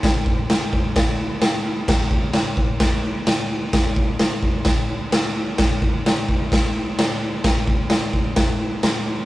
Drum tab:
CC |x-x-x-x-|x-x-x-x-|x-x-x-x-|x-x-x-x-|
SD |o-o-o-o-|o-o-o-o-|o-o-o-o-|o-o-o-o-|
BD |oo-oo---|oo-oo---|oo-oo---|oo-oo---|

CC |x-x-x-x-|
SD |o-o-o-o-|
BD |oo-oo---|